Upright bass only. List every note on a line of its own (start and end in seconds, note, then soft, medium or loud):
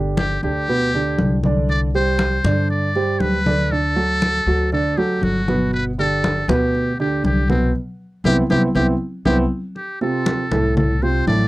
0.00 0.37 G1 medium
0.43 1.15 D2 medium
1.19 2.38 C2 medium
2.44 3.16 G2 medium
3.20 4.40 D2 medium
4.46 5.18 D2 medium
5.22 6.42 G1 medium
6.48 7.20 D2 medium
7.24 7.71 C2 medium
8.24 8.43 C2 medium
8.50 8.69 C2 medium
8.75 8.94 C2 medium
9.25 9.44 C2 medium
10.51 11.23 C2 medium
11.27 11.48 A1 medium